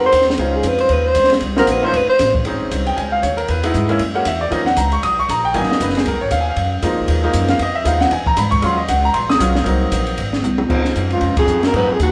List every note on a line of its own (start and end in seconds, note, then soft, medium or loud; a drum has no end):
0.00 0.12 F2 medium
0.00 0.11 G#3 medium
0.00 0.11 C4 medium
0.00 0.11 D#4 medium
0.00 0.11 F#4 medium
0.00 0.11 A#4 medium
0.06 0.28 C5 loud
0.12 0.37 D#2 medium
0.12 kick soft
0.12 hi-hat pedal medium
0.12 ride medium
0.22 snare soft
0.30 snare soft
0.38 0.63 C#2 medium
0.38 1.09 G#3 medium
0.38 1.10 C#4 medium
0.38 1.10 D#4 medium
0.38 1.10 F4 medium
0.38 1.10 C5 medium
0.38 kick soft
0.38 ride medium
0.55 0.69 G#4 medium
0.63 0.89 F2 medium
0.63 kick soft
0.63 hi-hat pedal medium
0.63 ride medium
0.68 0.79 B4 medium
0.79 0.94 C5 medium
0.79 ride soft
0.89 1.15 D#2 medium
0.89 kick soft
0.89 ride medium
0.93 1.08 B4 medium
1.07 1.32 C5 loud
1.15 1.41 C#2 medium
1.15 kick soft
1.15 hi-hat pedal medium
1.15 ride medium
1.24 snare soft
1.30 snare soft
1.30 ride medium
1.40 1.67 C2 medium
1.40 kick soft
1.40 ride medium
1.56 1.81 A#3 medium
1.56 1.81 C4 medium
1.56 1.81 D#4 medium
1.56 1.82 F#4 medium
1.56 1.73 A#4 loud
1.56 1.82 C5 medium
1.56 snare medium
1.67 1.93 A#1 medium
1.67 kick soft
1.67 hi-hat pedal medium
1.67 ride medium
1.71 1.86 B4 medium
1.82 1.92 A3 medium
1.82 1.92 C#4 medium
1.82 1.93 D#4 medium
1.82 1.93 F4 medium
1.82 1.93 C5 medium
1.82 1.98 C5 loud
1.93 2.07 F1 medium
1.93 2.09 B4 medium
1.93 kick soft
1.93 ride medium
2.08 2.33 C5 loud
2.08 muted upright bass stroke soft
2.19 2.44 A1 loud
2.19 kick soft
2.19 snare soft
2.19 hi-hat pedal medium
2.19 ride medium
2.35 kick medium
2.45 2.54 A#1 medium
2.45 3.16 G#3 medium
2.45 3.16 C4 medium
2.45 3.17 C#4 medium
2.45 3.17 D#4 medium
2.45 ride medium
2.54 2.62 G#1 soft
2.63 2.70 F1 medium
2.71 2.96 C2 medium
2.71 kick soft
2.71 hi-hat pedal medium
2.71 ride medium
2.87 2.97 G5 medium
2.87 ride soft
2.97 3.22 C#2 medium
2.97 3.11 G#5 medium
2.97 kick soft
2.97 ride medium
3.12 3.22 F5 medium
3.22 3.48 D#2 medium
3.22 3.37 C#5 medium
3.22 kick soft
3.22 hi-hat pedal medium
3.22 ride medium
3.37 3.48 A#4 medium
3.37 ride medium
3.48 3.74 E2 medium
3.48 3.87 B4 medium
3.48 kick soft
3.48 ride medium
3.63 3.87 G#3 medium
3.63 3.88 B3 medium
3.63 3.88 D#4 medium
3.63 3.88 E4 medium
3.63 ride medium
3.74 3.99 G#2 loud
3.74 kick soft
3.74 hi-hat pedal medium
3.89 3.99 G#3 medium
3.89 3.99 A#3 medium
3.89 3.99 C#4 medium
3.89 4.00 E4 medium
3.89 ride soft
3.99 4.25 F#2 medium
3.99 kick soft
3.99 ride medium
4.14 4.24 G#3 medium
4.14 4.24 A#3 medium
4.14 4.25 C#4 medium
4.14 4.25 F#4 medium
4.14 4.26 F#5 loud
4.25 4.51 E2 loud
4.25 4.41 E5 medium
4.25 kick soft
4.25 hi-hat pedal medium
4.25 ride medium
4.41 4.51 D5 medium
4.50 4.76 D#2 medium
4.50 4.64 F3 medium
4.50 4.65 A#3 medium
4.50 4.65 C#4 medium
4.50 4.65 D#4 medium
4.50 4.66 D#5 medium
4.50 kick soft
4.50 ride medium
4.66 4.77 F#5 medium
4.66 snare soft
4.76 5.02 C#2 medium
4.76 4.92 A#5 medium
4.76 kick soft
4.76 hi-hat pedal medium
4.76 ride medium
4.92 5.03 C#6 medium
4.92 ride soft
5.03 5.28 B1 medium
5.03 5.17 D#6 loud
5.03 kick soft
5.03 ride medium
5.19 5.29 C#6 loud
5.29 5.53 A#1 loud
5.29 5.44 A#5 medium
5.29 kick soft
5.29 hi-hat pedal medium
5.29 ride medium
5.45 5.55 G5 medium
5.54 5.68 G#1 medium
5.54 6.06 F#3 medium
5.54 6.06 A#3 medium
5.54 6.06 B3 medium
5.54 6.06 D#4 medium
5.54 5.69 G#5 loud
5.54 kick soft
5.54 ride medium
5.63 snare soft
5.69 5.81 D#5 medium
5.69 muted upright bass stroke soft
5.69 snare soft
5.80 6.05 F#1 loud
5.80 5.96 B4 medium
5.80 kick soft
5.80 hi-hat pedal medium
5.80 ride medium
5.90 snare soft
5.95 6.06 G#4 medium
5.95 snare soft
5.95 ride soft
6.05 6.13 C#2 medium
6.05 6.21 A#4 medium
6.05 kick soft
6.05 ride medium
6.13 6.21 B1 medium
6.21 6.30 G#1 medium
6.21 6.31 C#5 medium
6.31 6.56 D#2 medium
6.31 6.40 F5 medium
6.31 kick soft
6.31 hi-hat pedal medium
6.31 ride medium
6.41 6.49 G#5 medium
6.49 6.73 F5 medium
6.56 6.82 F#2 medium
6.56 kick soft
6.56 ride medium
6.82 6.92 F2 medium
6.82 7.20 F3 medium
6.82 7.21 G#3 medium
6.82 7.21 A#3 medium
6.82 7.21 D#4 medium
6.82 kick soft
6.82 hi-hat pedal medium
6.82 ride medium
6.91 6.99 C#2 medium
7.00 7.07 A#1 medium
7.08 7.33 D#2 medium
7.08 kick soft
7.08 ride medium
7.22 7.57 F3 medium
7.22 7.58 G#3 medium
7.22 7.58 A#3 medium
7.22 7.58 D#4 medium
7.33 7.59 F#2 loud
7.33 kick soft
7.33 hi-hat pedal medium
7.33 ride medium
7.48 7.60 F5 medium
7.48 snare soft
7.48 ride medium
7.59 7.85 F2 medium
7.59 7.76 D#5 medium
7.59 kick soft
7.59 ride medium
7.75 7.86 E5 medium
7.84 8.11 D#2 loud
7.84 8.11 F3 medium
7.84 8.11 G#3 medium
7.84 8.11 B3 medium
7.84 8.12 D#4 medium
7.84 8.01 F5 medium
7.84 kick soft
7.84 hi-hat pedal medium
7.84 ride medium
8.00 8.11 F#5 medium
8.00 snare soft
8.11 8.37 E2 medium
8.11 8.27 G#5 medium
8.11 kick soft
8.11 ride medium
8.26 8.37 A#5 loud
8.26 kick medium
8.37 8.62 G#2 loud
8.37 8.52 B5 medium
8.37 kick soft
8.37 hi-hat pedal medium
8.37 ride medium
8.51 8.62 C#6 loud
8.51 kick medium
8.51 ride medium
8.62 8.88 D#2 medium
8.62 8.76 F#3 medium
8.62 8.76 G#3 medium
8.62 8.77 C#4 medium
8.62 8.77 F4 medium
8.62 8.79 C6 loud
8.62 kick soft
8.62 ride medium
8.77 8.88 D#5 medium
8.88 9.14 C#2 loud
8.88 9.03 F#5 medium
8.88 kick soft
8.88 hi-hat pedal medium
8.88 ride medium
9.05 9.15 A#5 loud
9.14 9.40 A#1 medium
9.14 9.29 C6 medium
9.14 kick soft
9.14 ride medium
9.30 9.36 D#6 loud
9.30 snare medium
9.38 9.65 B1 loud
9.38 9.53 F#3 medium
9.38 9.53 G#3 medium
9.38 9.54 C#4 medium
9.38 9.54 F4 medium
9.38 kick soft
9.38 hi-hat pedal medium
9.38 ride medium
9.56 snare soft
9.64 9.91 C2 medium
9.64 10.17 F#3 medium
9.64 10.17 A#3 medium
9.64 10.17 C4 medium
9.64 10.17 D#4 medium
9.64 kick soft
9.64 ride medium
9.92 10.17 A#1 loud
9.92 kick soft
9.92 hi-hat pedal medium
9.92 ride medium
10.07 ride medium
10.18 10.42 G#1 medium
10.18 kick soft
10.18 ride medium
10.33 snare soft
10.43 10.68 C2 loud
10.43 hi-hat pedal medium
10.43 high tom medium
10.58 high tom medium
10.68 10.95 C#2 medium
10.68 11.40 F3 medium
10.68 11.40 G#3 medium
10.68 11.41 C4 medium
10.68 11.41 D#4 medium
10.68 kick medium
10.68 crash medium
10.85 snare soft
10.96 11.21 F#2 medium
10.96 kick soft
10.96 hi-hat pedal soft
10.96 ride medium
11.10 11.34 C#2 medium
11.10 11.36 F4 medium
11.10 ride soft
11.21 11.35 F2 medium
11.21 kick soft
11.21 ride medium
11.36 11.64 F2 medium
11.36 11.67 G#4 medium
11.36 kick medium
11.36 ride medium
11.46 11.72 F#2 medium
11.46 hi-hat pedal soft
11.63 11.74 F#2 medium
11.63 11.75 A#4 medium
11.63 snare medium
11.63 ride soft
11.73 11.87 G#2 medium
11.73 11.91 G#2 medium
11.73 11.87 F#3 medium
11.73 11.87 A#3 medium
11.73 11.87 B3 medium
11.73 11.88 D#4 medium
11.73 11.94 B4 medium
11.73 kick soft
11.73 ride medium
11.88 11.99 F2 medium
11.88 muted upright bass stroke soft
11.93 12.01 G#4 medium
11.99 12.12 D#2 medium
11.99 12.12 F#4 medium
11.99 kick soft
11.99 hi-hat pedal soft
11.99 ride medium